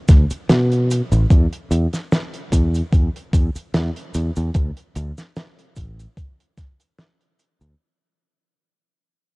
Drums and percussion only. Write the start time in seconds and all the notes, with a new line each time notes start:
0.08 kick, snare, closed hi-hat, cabasa
0.30 closed hi-hat, cabasa
0.49 snare, closed hi-hat, cabasa
0.72 closed hi-hat
0.91 closed hi-hat, cabasa
1.12 closed hi-hat, cabasa
1.30 kick, closed hi-hat, cabasa
1.53 closed hi-hat
1.71 closed hi-hat, cabasa
1.93 snare, closed hi-hat, cabasa
2.12 snare, closed hi-hat, cabasa
2.34 closed hi-hat
2.52 kick, closed hi-hat, cabasa
2.74 closed hi-hat, cabasa
2.93 kick, closed hi-hat, cabasa
3.16 closed hi-hat
3.33 kick, closed hi-hat, cabasa
3.56 closed hi-hat, cabasa
3.74 snare, closed hi-hat, cabasa
3.96 closed hi-hat
4.14 closed hi-hat, cabasa
4.36 closed hi-hat, cabasa
4.54 kick, closed hi-hat, cabasa
4.77 closed hi-hat
4.95 closed hi-hat, cabasa
5.17 snare, closed hi-hat, cabasa
5.36 snare, closed hi-hat, cabasa
5.59 closed hi-hat
5.76 kick, closed hi-hat, cabasa
5.99 closed hi-hat, cabasa
6.17 kick, closed hi-hat, cabasa
6.40 closed hi-hat
6.58 kick, snare, closed hi-hat, cabasa
6.80 closed hi-hat, cabasa
6.99 snare, closed hi-hat, cabasa
7.21 closed hi-hat
7.39 closed hi-hat, cabasa
7.61 closed hi-hat, cabasa